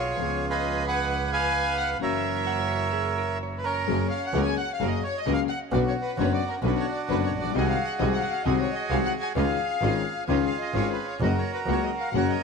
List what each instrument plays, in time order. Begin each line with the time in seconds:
Already playing: bandoneon F4 G#4 C#5, violin section C#5
0.17 double bass C#2, upright piano C#2 C#3 F3 B3 C#4 G#4, string section F3 C#4 B4
0.50 bandoneon G#4 B4 D#5, violin section D#5
0.87 bandoneon B4 F#5, violin section F#5
1.33 bandoneon B4 F5 G#5, violin section G#5
1.78 violin section F#5, bandoneon F#5
1.99 double bass F#1, upright piano F#2 E3 F#3 A#3 C#4 F#4, string section E4 F#4 A#4, bandoneon A#4 C#5, violin section E5
2.03 bandoneon E5
2.47 hollow-body jazz guitar F#5
2.93 hollow-body jazz guitar G#4
3.18 hollow-body jazz guitar A#4
3.43 hollow-body jazz guitar C#5
3.58 violin section B4, bandoneon B4
3.64 bandoneon C#4 A#4, violin section A#4
3.87 double bass F#1, upright piano F#2 F#3 A#3 C#4 G#4, string section F#4 G#4 A#4
4.10 violin section F5, bandoneon F5
4.27 bandoneon F#5, violin section F#5
4.33 double bass C#2, upright piano C#2 C#3 F#3 A#3 C#4 G#4, string section F#4 G#4 A#4
4.42 bandoneon G#5, violin section G#5
4.57 bandoneon F#5, violin section F#5
4.74 bandoneon F5, violin section F5
4.80 double bass F#1, upright piano F#2 F#3 A#3 C#4 G#4, string section F#4 G#4 A#4
4.87 bandoneon D#5, violin section D#5
5.03 bandoneon C#5, violin section C#5
5.18 bandoneon D#5, violin section D#5
5.25 double bass C#2, upright piano C#2 C#3 F#3 A#3 C#4 G#4, string section F#4 G#4 A#4
5.33 bandoneon F5, violin section F5
5.49 bandoneon F#5, violin section F#5
5.72 upright piano B1 B2 D3 B3 C#4 F#4, double bass B1, string section C#4 D4 B4, bandoneon F#4 D5, violin section D5
5.87 bandoneon C#5, violin section C#5
6.02 violin section B4, bandoneon B4
6.18 double bass F#1, upright piano F#1 F#2 D3 B3 C#4 F#4, string section C#4 D4 B4, violin section C#5, bandoneon C#5
6.33 violin section D5, bandoneon D5
6.47 violin section A#4, bandoneon A#4
6.62 double bass B1, upright piano B1 B2 D3 B3 C#4 F#4, string section C#4 D4 B4, violin section B4
6.66 bandoneon D4 F#4 B4
6.76 violin section C#5, bandoneon C#5
6.91 violin section D5
6.96 bandoneon D5
7.08 double bass F#1, upright piano F#1 F#2 D3 B3 C#4 F#4, string section C#4 D4 B4, violin section B4, bandoneon B4
7.23 violin section C#5, bandoneon C#5
7.32 double bass A#1
7.38 upright piano A1, violin section D5, bandoneon D5
7.44 upright piano A#1
7.50 upright piano B1, double bass C2
7.54 upright piano C2 C3 D#3 G#3 C4 F#4, string section C4 F#4 G#4, bandoneon F#4 G#4 D#5, violin section D#5
7.68 violin section F5, bandoneon F5
7.85 violin section F#5, bandoneon F#5
7.98 upright piano C2 C3 D#3 G#3 C4 F#4, double bass C2, string section C4 F#4 G#4, violin section D#5
8.02 bandoneon D#5
8.12 violin section F#5, bandoneon F#5
8.18 violin section F5 F#5, bandoneon F5
8.23 bandoneon F#5
8.29 violin section F5, bandoneon F5
8.45 double bass C2, upright piano C2 C3 D#3 G#3 C4 F#4, string section C4 F#4 G#4, bandoneon F#4 G#4 D#5, violin section D#5
8.59 violin section C#5, bandoneon C#5
8.73 violin section D#5, bandoneon D#5
8.90 double bass C2, upright piano C2 C3 D#3 G#3 C4 F#4, string section C4 F#4 G#4, violin section F5, bandoneon F5
9.05 violin section F#5, bandoneon F#5
9.21 violin section G#5, bandoneon G#5
9.35 upright piano C#2 C#3 D#3 G#3 C#4 F4, double bass C#2, string section C#4 D#4 F4, bandoneon G#4 F5, violin section F5
9.81 double bass G#1, upright piano G#1 G#2 D#3 G#3 C#4 F4, string section C#4 D#4 F4
10.27 double bass C#2, upright piano C#2 C#3 D#3 G#3 C#4 F4, string section C#4 D#4 F4, bandoneon F4 G#4 C#5, violin section C#5
10.45 bandoneon F5, violin section F5
10.60 violin section D#5, bandoneon D#5
10.74 double bass G#1, upright piano G#1 G#2 D#3 G#3 C#4 F4, string section C#4 D#4 F4, violin section C#5, bandoneon C#5
10.89 violin section B4, bandoneon B4
11.06 violin section C#5, bandoneon C#5
11.20 double bass F#1, upright piano F#2 C#3 F#3 A#3 F#4, string section A#3 C#4 F#4, bandoneon F#4 A#4 D#5, violin section D#5
11.37 violin section C#5, bandoneon C#5
11.52 violin section B4, bandoneon B4
11.66 double bass C#2, upright piano C#2 C#3 F#3 A#3 F#4, string section A#3 C#4 F#4, violin section C#5
11.71 bandoneon C#5
11.83 violin section D#5, bandoneon D#5
11.96 violin section F5
12.00 bandoneon F5
12.11 double bass F#1, upright piano F#2 C#3 F#3 A#3 F#4, string section A#3 C#4 F#4, violin section F#5
12.16 bandoneon A#4 C#5 F#5
12.29 violin section D#5, bandoneon D#5